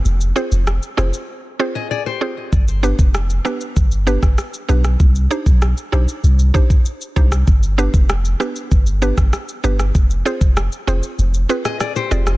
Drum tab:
SH |xxxxxxxx--------|xxxxxxxxxxxxxxxx|xxxxxxxxxxxxxxxx|xxxxxxxxxxxxxxxx|
SD |----r-r---------|----r-r----rr--r|----r-r--------r|----r-r----rr--r|
BD |----------------|o--o----o--o----|o--o------oo--o-|o--o----o--o----|

SH |xxxxxxxxxxxxxxxx|
SD |----r------rr--r|
BD |o--o------------|